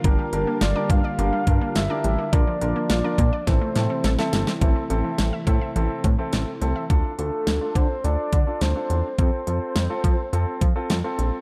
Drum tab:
HH |x-x-x-x-x-x-x-x-|x-x-x-x-x-x-x-x-|x-x-x-x-x-x-x-x-|x-x-x-x-x-x-x-x-|
SD |----o-------o---|----o---o-o-oooo|----o-------o---|----o-------o---|
BD |o-----o---o-----|o-----o-o-------|o-----o---o-----|o-----o---o-----|

HH |x-x-x-x-x-x-x-x-|
SD |----o-------o---|
BD |o-----o---o-----|